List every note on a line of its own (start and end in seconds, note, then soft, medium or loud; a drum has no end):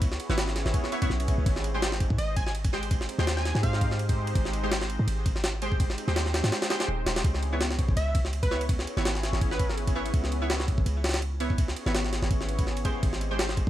0.00 0.18 C#2 loud
0.00 0.27 B3 medium
0.00 0.27 C#4 medium
0.00 0.27 E4 medium
0.00 0.27 G#4 medium
0.00 0.27 C#5 loud
0.00 0.27 C#5 medium
0.00 kick loud
0.00 ride medium
0.12 snare soft
0.20 ride medium
0.29 0.64 G#1 loud
0.29 1.18 B3 loud
0.29 0.44 B3 medium
0.29 1.18 C#4 medium
0.29 1.18 E4 medium
0.29 0.44 E4 medium
0.29 1.18 G#4 medium
0.29 1.18 C#5 loud
0.29 0.44 C#5 loud
0.29 snare soft
0.38 snare loud
0.38 ride medium
0.48 snare soft
0.56 snare soft
0.56 ride medium
0.66 0.73 G#1 loud
0.66 snare soft
0.74 kick loud
0.74 ride medium
0.84 snare soft
0.92 1.00 B3 medium
0.92 1.00 E4 medium
0.92 1.00 C#5 loud
0.92 ride medium
1.02 1.10 B3 loud
1.02 1.10 E4 medium
1.02 1.10 C#5 loud
1.02 kick loud
1.02 ride medium
1.10 1.36 B1 medium
1.10 snare soft
1.20 1.44 B3 medium
1.20 1.44 C#4 medium
1.20 1.44 E4 medium
1.20 1.44 G#4 loud
1.20 1.44 C#5 loud
1.20 ride medium
1.28 kick loud
1.28 ride medium
1.38 1.45 C#2 loud
1.46 2.09 G#1 loud
1.46 1.72 G#3 medium
1.46 1.72 C4 medium
1.46 1.72 D#4 medium
1.46 1.72 G4 medium
1.46 1.72 C5 loud
1.46 kick loud
1.46 ride medium
1.56 snare soft
1.64 ride medium
1.74 1.83 G#3 loud
1.74 1.88 G#3 medium
1.74 1.83 C4 medium
1.74 1.83 D#4 loud
1.74 1.83 G4 loud
1.74 1.88 G4 medium
1.74 1.83 C5 loud
1.74 1.88 C5 loud
1.82 snare loud
1.82 ride medium
1.92 snare medium
2.00 kick loud
2.00 ride medium
2.10 2.18 G#2 loud
2.10 kick loud
2.18 3.07 G#1 medium
2.18 2.36 D#5 loud
2.18 ride medium
2.36 2.43 G#5 medium
2.36 kick loud
2.36 ride medium
2.46 2.52 G#5 medium
2.46 snare soft
2.55 ride medium
2.65 kick loud
2.65 ride medium
2.73 3.16 G#3 medium
2.73 3.16 G4 medium
2.73 3.16 C5 loud
2.73 snare soft
2.83 ride medium
2.91 3.17 G#3 medium
2.91 3.17 C4 medium
2.91 3.16 D#4 medium
2.91 3.17 G4 medium
2.91 3.16 C5 loud
2.91 kick loud
2.91 ride medium
3.01 snare soft
3.09 ride medium
3.19 3.53 D#2 loud
3.19 4.07 G#3 loud
3.19 3.33 G#3 medium
3.19 4.07 C4 medium
3.19 4.07 D#4 medium
3.19 4.07 G4 medium
3.19 3.33 G4 medium
3.19 4.07 C5 loud
3.19 3.33 C5 loud
3.19 snare soft
3.27 snare loud
3.27 ride medium
3.37 3.61 G#5 medium
3.37 snare soft
3.45 snare soft
3.45 ride medium
3.55 3.62 G#2 loud
3.55 snare soft
3.63 4.34 G#2 loud
3.63 3.99 F5 medium
3.63 kick loud
3.63 ride medium
3.73 snare soft
3.81 kick loud
3.81 ride medium
3.91 snare soft
3.99 ride medium
4.09 4.33 G#3 loud
4.09 4.33 C4 medium
4.09 4.33 D#4 medium
4.09 4.33 G4 medium
4.09 4.33 C5 loud
4.09 kick loud
4.09 ride medium
4.27 ride medium
4.35 4.98 G#1 loud
4.35 4.61 G#3 medium
4.35 4.61 C4 medium
4.35 4.61 D#4 medium
4.35 4.61 G4 medium
4.35 4.61 C5 loud
4.35 kick loud
4.35 ride medium
4.45 snare soft
4.53 ride medium
4.63 4.72 G#3 loud
4.63 4.77 G#3 medium
4.63 4.72 C4 medium
4.63 4.72 D#4 medium
4.63 4.72 G4 medium
4.63 4.77 G4 medium
4.63 4.72 C5 loud
4.63 4.77 C5 loud
4.71 snare loud
4.71 ride medium
4.81 snare medium
4.90 ride medium
4.99 5.07 G#2 loud
5.07 5.97 G#1 medium
5.07 ride medium
5.26 kick loud
5.26 ride medium
5.36 snare soft
5.44 snare loud
5.44 ride medium
5.62 6.06 G#3 medium
5.62 6.06 G4 medium
5.62 6.06 C5 loud
5.62 ride medium
5.72 kick loud
5.80 6.05 G#3 medium
5.80 6.05 C4 medium
5.80 6.05 D#4 medium
5.80 6.05 G4 medium
5.80 6.05 C5 medium
5.80 kick loud
5.80 ride medium
5.90 snare soft
5.98 ride medium
6.08 6.42 D#2 loud
6.08 6.22 G#3 medium
6.08 6.69 G#3 loud
6.08 6.69 C4 medium
6.08 6.69 D#4 medium
6.08 6.22 G4 medium
6.08 6.69 G4 medium
6.08 6.22 C5 loud
6.08 6.69 C5 loud
6.08 snare soft
6.16 snare loud
6.16 ride medium
6.26 snare soft
6.34 snare loud
6.34 ride medium
6.44 6.51 G#2 loud
6.44 snare loud
6.44 ride medium
6.52 snare loud
6.52 ride medium
6.62 snare loud
6.62 ride medium
6.70 7.04 G#3 medium
6.70 6.79 G#3 medium
6.70 7.05 C4 medium
6.70 7.04 D#4 medium
6.70 6.79 G4 medium
6.70 7.04 G4 medium
6.70 6.79 C5 loud
6.70 7.04 C5 loud
6.70 snare loud
6.70 ride medium
6.80 6.88 G#3 medium
6.80 6.88 G4 medium
6.80 6.88 C5 loud
6.80 snare loud
6.80 ride medium
6.88 7.05 D#1 loud
7.06 7.23 D#1 medium
7.06 7.22 G#3 medium
7.06 7.22 C4 medium
7.06 7.22 D#4 medium
7.06 7.22 G4 medium
7.06 7.22 C5 medium
7.06 snare loud
7.06 ride medium
7.16 snare loud
7.16 ride medium
7.24 7.87 C#2 loud
7.24 7.50 B3 medium
7.24 7.50 C#4 medium
7.24 7.50 E4 medium
7.24 7.50 G#4 medium
7.24 7.50 C#5 loud
7.24 kick loud
7.24 ride medium
7.34 snare soft
7.43 ride medium
7.52 7.67 B3 medium
7.52 7.61 B3 loud
7.52 7.61 C#4 medium
7.52 7.67 E4 medium
7.52 7.61 E4 medium
7.52 7.61 G#4 medium
7.52 7.67 C#5 loud
7.52 7.61 C#5 loud
7.61 snare loud
7.61 ride medium
7.71 snare medium
7.79 kick medium
7.79 ride medium
7.89 7.96 G#1 loud
7.89 kick loud
7.96 8.86 C#2 medium
7.96 8.19 E5 loud
7.96 ride medium
8.15 kick loud
8.15 ride medium
8.25 snare soft
8.33 ride medium
8.43 8.64 B4 loud
8.43 kick loud
8.43 ride medium
8.51 8.95 B3 medium
8.51 8.95 E4 medium
8.51 8.95 C#5 loud
8.51 snare soft
8.61 ride medium
8.69 8.95 B3 medium
8.69 8.95 C#4 medium
8.69 8.95 E4 medium
8.69 8.95 G#4 medium
8.69 8.95 C#5 medium
8.69 kick loud
8.69 ride medium
8.79 snare soft
8.87 ride medium
8.97 9.32 G#1 loud
8.97 9.85 B3 medium
8.97 9.11 B3 medium
8.97 9.85 C#4 medium
8.97 9.11 E4 medium
8.97 9.85 E4 medium
8.97 9.85 G#4 medium
8.97 9.11 C#5 loud
8.97 9.85 C#5 loud
8.97 snare soft
9.05 snare loud
9.05 ride medium
9.15 snare soft
9.23 snare soft
9.23 ride medium
9.33 9.40 G#1 loud
9.33 snare soft
9.41 10.12 G#1 loud
9.41 kick loud
9.41 ride medium
9.51 9.77 B4 medium
9.51 snare soft
9.59 kick loud
9.59 ride medium
9.69 snare soft
9.78 ride medium
9.87 10.12 B3 loud
9.87 10.12 C#4 medium
9.87 10.12 E4 medium
9.87 10.12 G#4 medium
9.87 10.12 C#5 loud
9.87 kick loud
9.87 ride medium
9.95 10.39 B3 medium
9.95 10.39 E4 medium
9.95 10.39 C#5 loud
10.06 ride medium
10.14 10.76 C#2 loud
10.14 10.39 B3 medium
10.14 10.39 C#4 medium
10.14 10.39 E4 medium
10.14 10.39 G#4 medium
10.14 10.39 C#5 loud
10.14 kick loud
10.14 ride medium
10.24 snare soft
10.32 ride medium
10.42 10.56 B3 medium
10.42 10.50 B3 loud
10.42 10.50 C#4 medium
10.42 10.56 E4 medium
10.42 10.50 E4 loud
10.42 10.50 G#4 loud
10.42 10.56 C#5 loud
10.42 10.50 C#5 loud
10.50 snare loud
10.50 ride medium
10.60 snare medium
10.68 kick loud
10.68 ride medium
10.78 10.85 G#1 loud
10.78 kick medium
10.86 11.75 C#2 medium
10.86 ride medium
11.04 snare medium
11.04 ride medium
11.09 snare medium
11.09 ride medium
11.14 snare loud
11.14 ride medium
11.22 ride medium
11.40 11.84 B3 medium
11.40 11.84 E4 medium
11.40 11.84 C#5 loud
11.40 ride medium
11.50 kick loud
11.58 11.84 B3 medium
11.58 11.84 C#4 medium
11.58 11.84 E4 medium
11.58 11.84 G#4 medium
11.58 11.84 C#5 medium
11.58 kick loud
11.58 ride medium
11.68 snare soft
11.76 ride medium
11.86 12.21 G#1 loud
11.86 12.00 B3 medium
11.86 12.47 B3 loud
11.86 12.47 C#4 medium
11.86 12.00 E4 medium
11.86 12.47 E4 medium
11.86 12.47 G#4 medium
11.86 12.00 C#5 loud
11.86 12.47 C#5 loud
11.86 snare soft
11.95 snare loud
11.95 ride medium
12.04 snare soft
12.13 snare soft
12.13 ride medium
12.22 12.30 G#1 loud
12.22 snare soft
12.31 13.02 G#1 loud
12.31 kick loud
12.31 ride medium
12.41 snare soft
12.48 12.83 B3 medium
12.48 12.83 C#4 medium
12.48 12.83 E4 medium
12.48 12.83 G#4 medium
12.48 12.83 C#5 loud
12.48 ride medium
12.59 kick loud
12.59 ride medium
12.67 snare soft
12.77 ride medium
12.85 13.28 G#3 medium
12.85 13.01 B3 medium
12.85 13.01 C#4 medium
12.85 13.01 E4 medium
12.85 13.28 G4 medium
12.85 13.01 G#4 medium
12.85 13.28 C5 loud
12.85 13.01 C#5 medium
12.85 kick loud
12.85 ride medium
13.03 13.65 G#1 loud
13.03 13.28 G#3 loud
13.03 13.28 C4 medium
13.03 13.28 D#4 medium
13.03 13.28 G4 medium
13.03 13.28 C5 loud
13.03 kick loud
13.03 ride medium
13.13 snare soft
13.21 ride medium
13.30 13.39 G#3 loud
13.30 13.45 G#3 medium
13.30 13.39 C4 medium
13.30 13.39 D#4 medium
13.30 13.39 G4 medium
13.30 13.45 G4 medium
13.30 13.39 C5 loud
13.30 13.45 C5 loud
13.39 snare loud
13.39 ride medium
13.49 snare medium
13.57 kick loud
13.57 ride medium